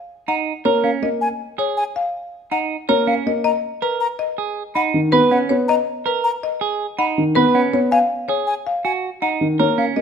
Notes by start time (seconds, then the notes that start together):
0.28 D#4 F#5 A#5
0.65 A#3 A#4 C#5
0.84 C#4 F5
1.02 A#3 D#5
1.21 G#5
1.58 G#4 C#5
1.77 G#5
1.96 F5
2.51 D#4 F#5 A#5
2.89 A#3 A#4 C#5
3.07 C#4 F5
3.26 A#3 D#5
3.44 D#5 A#5
3.82 A#4 B4
4.00 A#5
4.19 D#5
4.38 G#4
4.75 D#4 F#5 B5
4.94 D#3
5.12 B3 B4
5.31 C#4 F#5
5.49 B3 C#5
5.68 D#5 A#5
6.06 A#4 B4
6.24 A#5
6.43 D#5
6.61 G#4
6.99 D#4 F#5 B5
7.18 D#3
7.35 B3 B4
7.54 C#4 F#5
7.73 B3 C#5
7.91 F5 G#5
8.29 G#4 C#5
8.47 G#5
8.67 F5
8.85 F#4 G#5
9.22 D#4 F#5 A#5
9.41 D#3
9.59 A#3 A#4 C#5
9.78 C#4 F5
9.96 A#3 D#5